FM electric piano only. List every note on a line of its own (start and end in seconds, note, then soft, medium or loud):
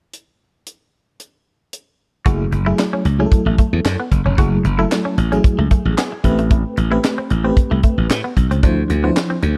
2.25 2.55 F#3 medium
2.25 2.55 A3 medium
2.25 2.56 E4 medium
2.25 2.56 G#4 medium
2.66 3.05 F#3 medium
2.66 3.05 A3 medium
2.66 3.05 E4 medium
2.66 3.05 G#4 medium
3.19 3.98 F#3 medium
3.19 3.98 A3 medium
3.19 3.98 E4 medium
3.19 3.26 G#4 medium
3.26 4.02 A4 medium
4.38 4.68 F#3 medium
4.38 4.68 A3 medium
4.38 4.68 E4 medium
4.38 4.68 G#4 medium
4.78 5.17 F#3 medium
4.78 5.17 A3 medium
4.78 5.17 E4 medium
4.78 5.18 A4 medium
5.32 6.11 F#3 medium
5.32 6.11 A3 medium
5.32 6.11 E4 medium
5.32 6.11 G#4 medium
5.97 6.22 G#5 medium
6.24 6.77 A3 medium
6.24 6.77 C4 medium
6.24 6.77 G4 medium
6.24 6.77 B4 loud
6.24 6.49 E5 medium
6.91 7.30 A3 medium
6.91 7.30 C4 medium
6.91 7.30 G4 medium
6.91 7.30 B4 medium
7.44 8.23 A3 medium
7.44 8.23 C4 medium
7.44 8.23 G4 medium
7.44 8.23 B4 medium
8.63 8.93 F3 medium
8.63 8.93 D4 medium
8.63 8.93 E4 medium
8.63 8.93 C5 medium
9.03 9.42 F3 medium
9.03 9.42 D4 medium
9.03 9.42 E4 medium
9.03 9.43 C5 medium